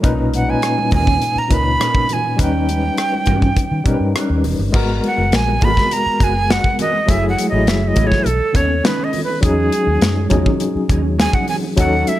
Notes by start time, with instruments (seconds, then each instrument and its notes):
0.01 fingered electric bass B1, tine electric piano A#2 C#4 D#4 B4, clean electric guitar C#4 D#4 A#4, kick, closed hi-hat
0.19 muted conga
0.34 flute F#5, closed hi-hat, high conga
0.46 tine electric piano A#2 C#4 D#4 B4, muted clean electric guitar stroke
0.50 flute G#5
0.62 cross-stick, closed hi-hat, muted conga
0.78 muted clean electric guitar stroke, muted conga, high conga
0.91 fingered electric bass D#2, clean electric guitar C#4 D#4 A#4, flute G#5, kick, open hi-hat, low conga
1.07 muted clean electric guitar stroke, kick, cross-stick, low conga
1.22 muted clean electric guitar stroke, closed hi-hat
1.35 flute A#5, muted fingered electric bass stroke, muted conga
1.49 fingered electric bass C#2, tine electric piano A#2 C#4 D#4 B4, clean electric guitar C#4 D#4 A#4, kick, closed hi-hat, high conga
1.53 flute B5
1.65 muted clean electric guitar stroke
1.80 clean electric guitar C#4 D#4 A#4, cross-stick, closed hi-hat
1.95 kick, high conga
2.09 muted clean electric guitar stroke, closed hi-hat, low conga
2.13 flute G#5
2.24 muted clean electric guitar stroke
2.36 fingered electric bass D#2, tine electric piano G3 C#4 D#4 B4, clean electric guitar C#4 G4 B4, kick, closed hi-hat, muted conga
2.42 flute G5
2.54 muted conga
2.69 closed hi-hat, high conga
2.83 muted clean electric guitar stroke
2.98 cross-stick, closed hi-hat
3.12 muted clean electric guitar stroke, high conga
3.26 fingered electric bass G2, clean electric guitar C#4 G4 B4, kick, closed hi-hat, low conga
3.41 muted clean electric guitar stroke, kick, cross-stick, low conga
3.56 muted clean electric guitar stroke, kick, closed hi-hat, muted conga
3.72 fingered electric bass D#3
3.84 fingered electric bass B2, tine electric piano G3 C#4 D#4 A#4, clean electric guitar C#4 G4 B4, kick, closed hi-hat, high conga
3.94 tine electric piano B4
4.00 fingered electric bass G2, muted clean electric guitar stroke
4.15 clean electric guitar C#4 G4 B4, cross-stick, closed hi-hat, muted conga
4.29 fingered electric bass D#2, muted conga, high conga
4.44 fingered electric bass E1, muted clean electric guitar stroke, open hi-hat, low conga
4.59 fingered electric bass G1, muted clean electric guitar stroke
4.72 fingered electric bass G#1, tine electric piano G#3 B3 F#4 A#4, clean electric guitar B3 F#4 A#4, kick, crash
4.88 muted conga
5.04 flute F#5, closed hi-hat, high conga
5.18 fingered electric bass F#1, muted clean electric guitar stroke
5.32 fingered electric bass A#1, flute G#5, snare, closed hi-hat, muted conga
5.47 muted clean electric guitar stroke, high conga
5.60 fingered electric bass G#1, tine electric piano G#3 B3 F#4 G#4, clean electric guitar B3 F#4 A#4, kick, open hi-hat, low conga
5.64 flute B5
5.70 tine electric piano A#4
5.76 muted clean electric guitar stroke, kick, snare, low conga
5.91 flute A#5, muted clean electric guitar stroke, closed hi-hat
6.06 muted fingered electric bass stroke, muted conga
6.20 fingered electric bass F#1, clean electric guitar B3 F#4 A#4, flute G#5, kick, closed hi-hat, high conga
6.35 muted clean electric guitar stroke
6.50 clean electric guitar B3 F#4 A#4, flute F#5, snare, closed hi-hat
6.64 muted clean electric guitar stroke, kick, high conga
6.79 clean electric guitar B3 F#4 A#4, flute D#5, closed hi-hat, low conga
6.94 muted clean electric guitar stroke
7.06 fingered electric bass F#1, tine electric piano F#3 A3 E4 G#4, clean electric guitar A3 E4 G#4, kick, closed hi-hat, muted conga
7.11 flute E5
7.23 muted conga
7.29 flute F#5
7.38 closed hi-hat, high conga
7.49 fingered electric bass A1, tine electric piano F#3 A3 E4, flute D#5, muted clean electric guitar stroke
7.54 tine electric piano G#4
7.67 fingered electric bass F#1, flute E5, snare, closed hi-hat
7.82 muted clean electric guitar stroke, high conga
7.88 flute D#5
7.95 fingered electric bass A1, tine electric piano F#3 A3 E4 G#4, clean electric guitar A3 E4 G#4, kick, closed hi-hat, low conga
8.07 flute C#5, low conga
8.11 muted clean electric guitar stroke, kick, snare
8.25 fingered electric bass B1, flute A4, muted clean electric guitar stroke, closed hi-hat, muted conga
8.40 muted fingered electric bass stroke, muted conga
8.53 fingered electric bass D#2, tine electric piano D#3 B3 C#4 A4, clean electric guitar C#4 D#4 A4, flute C#5, kick, closed hi-hat, high conga
8.70 muted clean electric guitar stroke
8.84 clean electric guitar C#4 D#4 A4, flute B4, snare, closed hi-hat, muted conga
8.99 muted conga, high conga
9.04 flute D#5
9.13 muted clean electric guitar stroke, open hi-hat, low conga
9.24 flute B4
9.28 muted clean electric guitar stroke
9.41 fingered electric bass E2, tine electric piano F#3 C#4 D#4 G#4, clean electric guitar C#4 D#4 G#4, flute G#4, kick, closed hi-hat, muted conga
9.72 closed hi-hat, high conga
9.86 fingered electric bass D#2, muted clean electric guitar stroke
10.01 fingered electric bass F#2, snare, closed hi-hat
10.15 muted clean electric guitar stroke, muted conga, high conga
10.29 fingered electric bass E2, tine electric piano F#3 C#4 D#4 G#4, clean electric guitar C#4 D#4 G#4, kick, closed hi-hat, low conga
10.45 muted clean electric guitar stroke, kick, low conga
10.60 muted clean electric guitar stroke, closed hi-hat, muted conga
10.75 muted fingered electric bass stroke, muted conga
10.89 fingered electric bass D#2, clean electric guitar C#4 D#4 G#4, kick, closed hi-hat, high conga
11.04 muted clean electric guitar stroke
11.19 clean electric guitar C#4 D#4 G#4, flute G#5, snare, closed hi-hat
11.33 flute F#5, kick, muted conga, high conga
11.48 flute G#5, muted clean electric guitar stroke, open hi-hat, low conga
11.63 muted clean electric guitar stroke
11.77 fingered electric bass D#2, tine electric piano F#3 C#4 D#4 A4, clean electric guitar C#4 F#4 A4, flute F#5, kick, closed hi-hat
11.93 muted conga
12.07 flute E5, closed hi-hat, high conga